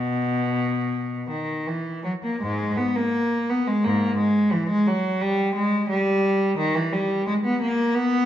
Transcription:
Already playing: B2
1.30 D#3
1.67 E3
2.04 F#3
2.24 A#3
2.41 G#2 G#3
2.77 B3
2.96 A#3
3.50 B3
3.67 G#3
3.84 G#2 A#3
4.17 G#3
4.53 E3
4.70 G#3
4.87 F#3
5.21 G3
5.55 G#3
5.89 G3
6.58 D#3
6.75 E3
6.93 G3
7.27 G#3
7.44 B3
7.62 A#3
7.95 B3

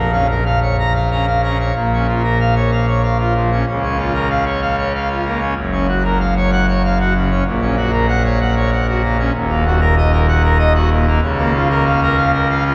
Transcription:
Already playing: A#1 A#2 A#4
0.13 C#4 F5
0.30 A#4
0.45 F5
0.62 C#5
0.79 A#5
0.95 F5
1.12 C#4 A#5
1.27 F5
1.43 C#4 A#5
1.61 C#5
1.75 A#1 A#2
1.93 C#4
2.09 F4
2.24 A#4
2.40 F5
2.56 C#5
2.72 F5
2.88 C#5
3.03 F5
3.20 F4
3.36 F3
3.52 C#4
3.68 C#2 C#3
3.83 C#4
3.99 F4
4.14 A#4
4.30 F5
4.46 C#5
4.62 F5
4.78 C#5
4.95 F5
5.11 F4
5.26 A#3
5.41 C#4
5.57 F#1 F#2
5.73 C#4
5.89 F#4
6.04 A#4
6.20 F5
6.36 C#5
6.52 F#5
6.69 C#5
6.85 F5
7.00 F#4
7.15 C#3
7.31 C#4
7.46 A#1 A#2
7.62 C#4
7.77 F#4
7.92 A#4
8.09 F#5
8.25 C#5
8.41 F#5
8.56 C#5
8.73 F#5
8.88 F#4
9.03 A#3
9.19 C#4
9.34 D#1 D#2
9.50 A#3
9.66 F#4
9.81 A#4
9.98 D#5
10.12 A#4
10.29 F#5
10.43 A#4
10.59 D#5
10.75 F#4
10.91 A#2
11.07 A#3
11.22 C#2 C#3
11.38 A#3
11.54 F4
11.70 A#4
11.86 F5
12.03 A#4
12.17 F5
12.33 A#4
12.50 F5
12.65 F4

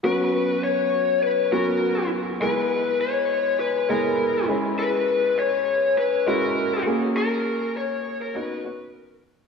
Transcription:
0.03 F#3 B3 C#4 F#4 B4
0.64 C#5
1.23 B4
1.52 F#3 B3 C#4 F#4 A#4
2.40 G#3 B3 E4 G#4 B4
3.01 C#5
3.60 B4
3.89 G#3 B3 E4 G#4 A#4
4.48 G#3 C#4 E4 G#4
4.79 B4
5.39 C#5
5.98 B4
6.26 G#3 C#4 E4 F#4 A#4
6.86 A#3 C#4 F#4 G#4
7.17 A#4
7.77 C#5
8.22 A#4
8.35 B3 C#4 D#4 F#4 B4
8.65 B3 C#4 D#4 F#4
8.94 A#4

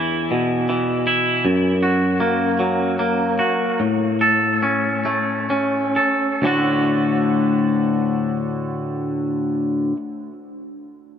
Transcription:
Already playing: E2 E3 E4
0.31 B2
0.69 E3
1.07 E4
1.45 F#2
1.83 F#4
2.20 A#3
2.59 F#3
2.99 A#3
3.39 F#4
3.80 A2
4.21 A4
4.63 C#4
5.05 A3
5.50 C#4
5.96 A4
6.42 D2 A2 D3 A3
6.46 F#4

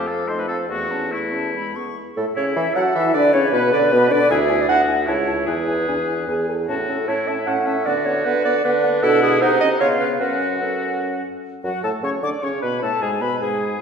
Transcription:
Already playing: F2
0.06 A3 C4 A4 F5
0.26 A3 D#4 C5 D#5
0.39 B4
0.47 C4 F4 A4 F5
0.68 E2 A3 E4 F#4 C#6
0.89 C#4 A4 A5
1.11 A3 E4 C#6
1.33 C#4 A4 A5
1.54 G#3 E4 B5
1.75 B3 G#4 C#6
2.17 A2 A3 A4
2.36 C#3 C#4 E4 C#5
2.55 E3 E4 E5
2.75 F#3 F#4 A4 F#5
2.95 E3 E4 E5
3.14 D3 D4 B4 D5
3.33 C#3 C#4 C#5
3.52 B2 B3 B4
3.72 D3 D4 D5
3.92 B2 B3 B4
4.11 D3 D4 D5
4.30 D2 E4 G#4 E5 G#5
4.49 E4 G#5
4.61 D5
4.69 D2 E4 F#4 F#5 G#5
4.88 E4 G#5
4.99 E5
5.07 C#2 E4 C#5 A5
5.27 E4 A5
5.46 E2 E4 G#4 B4 G#5
5.68 E4 G#5
5.88 E2 D4 G#5
6.08 E4 G#5
6.28 E2 G#4 G#5
6.48 A4 G#5
6.68 A2 C#4 F#4 A5
6.88 C#4 A4 A5
7.07 A2 C#4 E4 C#5 A5
7.28 C#4 E5 A5
7.46 A2 C#4 F#5 A5
7.66 C#4 E5 A5
7.85 D3 B3 F#4 D5 F#5
8.05 B3 C#5 F#5
8.25 D3 B3 B4 F#5
8.45 B3 D5 F#5
8.64 D3 B3 D4 B4 F#5
8.83 B3 F#5
9.02 B2 D4 E4 A4 F#5
9.23 G#4
9.41 C3 D#4 C5 F#5
9.61 C#4 D#5
9.80 C#3 B3 F4 C#5 F5
10.00 B4
10.20 F#2 C#4 F#4 B4 F#5
10.61 C#4 A4 F#5
11.63 F#2 F#3 F#4 F#5
11.83 A2 A3 A4 A5
12.03 C#3 C#4 C#5 C#6
12.23 D3 D4 D5 D6
12.42 C#3 C#4 C#5 C#6
12.62 B2 B3 B4 B5
12.82 A2 A3 A4 A5
13.01 G#2 G#3 G#4 G#5
13.21 B2 B3 B4 B5
13.41 G#2 G#3 G#4 G#5

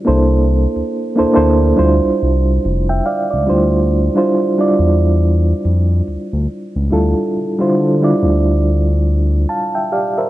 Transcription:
0.05 C2 A#3 D4 E4 A4 C5
0.76 D2
1.16 D2 A#3 D4 E4 A4 C5
1.33 A#3 D4 E4 A4 C5
1.37 D2
1.76 D2 G3 D4 E4 F4 C5
2.05 C2
2.23 C2
2.65 F1
2.89 E5 G5
3.06 D5 F5
3.31 C#2 D5
3.47 G3 D4 E4 F4 C5
3.51 D2
4.15 G3 D4 E4 F4 C5
4.58 G3 D4 E4 F4 D5
4.79 E2
5.65 F2
6.08 D2
6.33 D2
6.76 C#2
6.90 D2 G3 D4 E4 F4 A4
7.36 D3
7.58 D3 G3 D4 E4 F4 C5
8.01 G3 D4 E4 F4 D5
8.23 D2
9.49 F5 A5
9.75 E5 G5
9.92 G4 D5 F5
10.18 A#4 C5 E5

